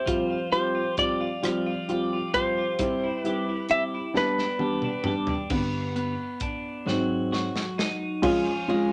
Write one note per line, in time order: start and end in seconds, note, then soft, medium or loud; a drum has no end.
0.00 0.16 E4 medium
0.00 0.33 G4 medium
0.00 0.49 C5 medium
0.06 1.42 F3 medium
0.06 0.33 G3 medium
0.06 0.33 C4 medium
0.06 0.34 F4 medium
0.06 kick loud
0.06 closed hi-hat medium
0.30 0.74 F4 medium
0.52 0.78 G3 medium
0.52 0.79 C4 medium
0.52 0.79 F4 medium
0.52 0.98 G4 medium
0.52 0.95 C5 medium
0.52 closed hi-hat soft
0.75 1.19 F4 medium
0.97 1.24 G3 medium
0.97 1.24 C4 medium
0.97 1.24 F4 medium
0.97 1.90 G4 medium
0.97 2.34 D5 medium
0.97 kick medium
0.97 closed hi-hat medium
1.21 1.65 F4 medium
1.42 2.79 F3 medium
1.42 1.69 G3 medium
1.42 1.69 C4 medium
1.42 1.69 F4 medium
1.42 cross-stick loud
1.42 closed hi-hat medium
1.66 2.12 F4 medium
1.88 2.15 G3 medium
1.88 2.15 C4 medium
1.88 2.15 F4 medium
1.88 2.35 G4 medium
1.88 closed hi-hat soft
2.13 2.56 F4 medium
2.34 2.60 G3 medium
2.34 2.60 C4 medium
2.34 2.60 F4 medium
2.34 3.26 G4 medium
2.34 3.20 C5 medium
2.34 kick medium
2.34 closed hi-hat medium
2.58 2.89 F4 soft
2.79 3.05 G3 medium
2.79 6.29 G3 medium
2.79 3.05 C4 medium
2.79 3.05 E4 medium
2.79 kick medium
2.79 closed hi-hat medium
3.03 3.48 E4 medium
3.20 3.50 G3 medium
3.20 3.66 B4 medium
3.24 3.51 C4 medium
3.24 3.51 E4 medium
3.24 3.71 G4 medium
3.24 closed hi-hat soft
3.49 3.93 E4 soft
3.69 3.96 G3 medium
3.69 3.96 C4 medium
3.69 3.96 E4 medium
3.69 4.61 G4 medium
3.69 3.83 E5 medium
3.69 cross-stick soft
3.69 closed hi-hat medium
3.94 4.25 E4 medium
4.14 4.41 G3 medium
4.14 4.41 B3 medium
4.14 5.50 B3 medium
4.14 4.41 D4 medium
4.14 5.14 B4 medium
4.14 snare soft
4.38 4.84 D4 medium
4.38 snare soft
4.59 4.86 G3 medium
4.59 4.86 B3 medium
4.59 4.86 D4 medium
4.59 5.06 G4 medium
4.59 high tom medium
4.82 5.28 D4 medium
4.82 mid tom medium
5.04 5.31 G3 medium
5.04 5.31 B3 medium
5.04 5.32 D4 medium
5.04 5.61 G4 medium
5.04 mid tom medium
5.27 5.61 D4 medium
5.27 floor tom medium
5.50 6.11 G2 soft
5.50 6.11 D3 soft
5.50 6.12 B3 medium
5.50 5.95 B3 medium
5.50 kick loud
5.50 crash loud
5.96 6.96 B3 medium
5.96 closed hi-hat soft
6.40 6.96 D4 medium
6.40 kick medium
6.40 closed hi-hat medium
6.86 7.47 G#2 soft
6.86 7.47 F#3 soft
6.86 8.23 F#3 medium
6.86 7.47 C4 medium
6.86 snare medium
7.32 8.32 F#4 medium
7.32 snare medium
7.56 snare medium
7.78 8.24 D#4 medium
7.78 snare medium
8.22 8.46 F3 medium
8.22 8.49 G#3 medium
8.22 8.49 C#4 medium
8.22 8.91 C#4 medium
8.22 8.49 F4 medium
8.22 kick loud
8.22 crash loud
8.46 8.93 F3 medium
8.68 8.93 G#3 medium
8.68 8.93 C#4 medium
8.68 8.93 F4 medium
8.68 ride soft